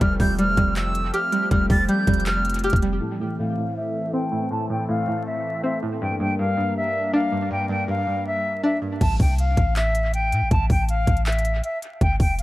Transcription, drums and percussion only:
0.01 kick, closed hi-hat
0.20 kick, open hi-hat
0.39 closed hi-hat
0.57 kick, closed hi-hat
0.76 clap, closed hi-hat
0.95 closed hi-hat
1.14 closed hi-hat
1.32 closed hi-hat
1.51 kick, closed hi-hat
1.70 kick, open hi-hat
1.89 closed hi-hat
2.07 kick, closed hi-hat
2.14 closed hi-hat
2.20 closed hi-hat
2.26 clap, closed hi-hat
2.45 closed hi-hat
2.50 closed hi-hat
2.54 closed hi-hat
2.59 closed hi-hat
2.64 closed hi-hat
2.70 kick, closed hi-hat
2.76 closed hi-hat
2.82 closed hi-hat
9.01 kick, closed hi-hat, crash
9.20 kick, open hi-hat
9.39 closed hi-hat
9.57 kick, closed hi-hat
9.76 clap, closed hi-hat
9.95 closed hi-hat
10.14 closed hi-hat
10.32 closed hi-hat
10.51 kick, closed hi-hat
10.70 kick, open hi-hat
10.89 closed hi-hat
11.07 kick, closed hi-hat
11.17 closed hi-hat
11.26 clap, closed hi-hat
11.32 closed hi-hat
11.39 closed hi-hat
11.45 closed hi-hat
11.64 closed hi-hat
11.82 closed hi-hat
12.01 kick, closed hi-hat
12.20 kick, open hi-hat
12.39 closed hi-hat

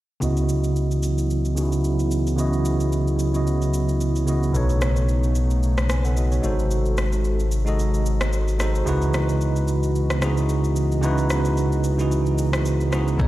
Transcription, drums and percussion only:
0.22 shaker
0.37 shaker
0.49 shaker
0.64 shaker
0.76 shaker
0.91 shaker
1.03 shaker
1.18 shaker
1.30 shaker
1.45 shaker
1.57 shaker
1.72 shaker
1.84 shaker
1.99 shaker
2.11 shaker
2.27 shaker
2.38 shaker
2.53 shaker
2.65 shaker
2.80 shaker
2.92 shaker
3.07 shaker
3.19 shaker
3.34 shaker
3.47 shaker
3.62 shaker
3.74 shaker
3.89 shaker
4.01 shaker
4.16 shaker
4.28 shaker
4.43 shaker
4.55 shaker
4.69 shaker
4.81 cross-stick, shaker
4.96 shaker
5.09 shaker
5.24 shaker
5.35 shaker
5.51 shaker
5.63 shaker
5.78 cross-stick, shaker
5.89 cross-stick, shaker
6.05 shaker
6.17 shaker
6.32 shaker
6.44 shaker
6.59 shaker
6.71 shaker
6.86 shaker
6.97 cross-stick, shaker
7.12 shaker
7.24 shaker
7.40 shaker
7.51 shaker
7.67 shaker
7.79 shaker
7.94 shaker
8.06 shaker
8.21 cross-stick, shaker
8.33 shaker
8.48 shaker
8.60 cross-stick, shaker
8.75 shaker
8.87 shaker
9.02 shaker
9.14 cross-stick, shaker
9.29 shaker
9.41 shaker
9.56 shaker
9.68 shaker
9.83 shaker
9.95 shaker
10.10 cross-stick, shaker
10.22 cross-stick, shaker
10.37 shaker
10.49 shaker
10.64 shaker
10.76 shaker
10.92 shaker
11.03 shaker
11.18 shaker
11.30 cross-stick, shaker
11.45 shaker
11.57 shaker
11.72 shaker
11.84 shaker
11.99 shaker
12.12 shaker
12.26 shaker
12.38 shaker
12.53 cross-stick, shaker
12.65 shaker
12.81 shaker
12.92 cross-stick, shaker
13.08 shaker
13.19 kick, shaker

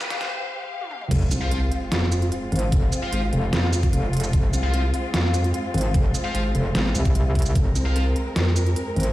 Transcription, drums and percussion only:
0.01 snare, shaker
0.10 snare, closed hi-hat
0.21 snare, closed hi-hat
0.81 high tom
0.91 mid tom
1.01 mid tom
1.11 kick, closed hi-hat, crash
1.31 closed hi-hat, shaker
1.51 closed hi-hat
1.72 closed hi-hat
1.92 snare, closed hi-hat
2.12 closed hi-hat, shaker
2.22 closed hi-hat
2.32 closed hi-hat
2.52 closed hi-hat
2.56 closed hi-hat
2.59 closed hi-hat
2.72 kick, closed hi-hat
2.92 closed hi-hat, shaker
3.13 closed hi-hat
3.33 closed hi-hat
3.53 snare, closed hi-hat
3.73 closed hi-hat, shaker
3.83 kick, closed hi-hat
3.93 closed hi-hat
4.13 closed hi-hat
4.17 closed hi-hat
4.20 closed hi-hat, shaker
4.33 kick, closed hi-hat
4.53 closed hi-hat, shaker
4.74 closed hi-hat
4.94 closed hi-hat
5.14 snare, closed hi-hat
5.34 closed hi-hat, shaker
5.44 closed hi-hat
5.54 closed hi-hat
5.74 closed hi-hat
5.78 closed hi-hat
5.81 closed hi-hat
5.94 kick, closed hi-hat
6.15 closed hi-hat, shaker
6.35 closed hi-hat
6.55 closed hi-hat
6.75 snare, closed hi-hat
6.95 closed hi-hat, shaker
7.05 kick, closed hi-hat
7.15 closed hi-hat
7.35 kick, closed hi-hat
7.39 closed hi-hat
7.42 closed hi-hat, shaker
7.55 kick, closed hi-hat
7.76 closed hi-hat, shaker
7.96 closed hi-hat
8.16 closed hi-hat
8.36 snare, closed hi-hat
8.56 closed hi-hat, shaker
8.66 closed hi-hat
8.76 closed hi-hat
8.96 closed hi-hat
9.00 closed hi-hat
9.03 closed hi-hat

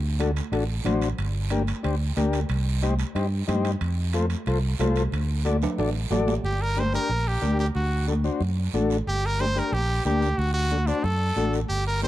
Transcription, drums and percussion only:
0.19 high conga, high timbale, short guiro
0.36 high timbale, short guiro
0.53 high conga, high timbale, long guiro
0.85 high conga, low conga, high timbale, short guiro
1.02 high timbale, short guiro
1.18 high conga, high timbale, long guiro
1.50 high conga, high timbale, short guiro
1.67 high timbale, short guiro
1.84 high conga, high timbale, long guiro
2.17 high conga, high timbale, short guiro
2.33 high timbale, short guiro
2.49 high conga, high timbale, long guiro
2.82 high conga, high timbale, short guiro
2.99 high timbale, short guiro
3.16 high conga, high timbale, long guiro
3.48 high conga, low conga, high timbale, short guiro
3.65 high timbale, short guiro
3.81 high conga, high timbale, long guiro
4.13 high conga, high timbale, short guiro
4.30 high timbale, short guiro
4.46 high conga, high timbale, long guiro
4.79 high conga, high timbale, low timbale, short guiro
4.96 high timbale, short guiro
5.12 high conga, high timbale, long guiro
5.45 high conga, high timbale, short guiro
5.62 low conga, high timbale, short guiro
5.78 high conga, high timbale, long guiro
6.11 high conga, low conga, low timbale, short guiro
6.28 low timbale, short guiro
6.45 high conga, long guiro
6.78 high conga, short guiro
6.94 short guiro
7.10 high conga, long guiro
7.42 high conga, short guiro
7.59 short guiro
7.75 high conga, long guiro
8.08 high conga, short guiro
8.24 short guiro
8.41 high conga, long guiro
8.74 high conga, short guiro
8.90 short guiro
9.07 high conga, long guiro
9.40 high conga, short guiro
9.57 short guiro
9.73 high conga, long guiro
10.05 high conga, short guiro
10.22 short guiro
10.39 high conga, long guiro
10.71 high conga, short guiro
10.87 short guiro
11.04 high conga, long guiro
11.37 high conga, short guiro
11.53 short guiro
11.70 high conga, long guiro
12.02 high conga, short guiro

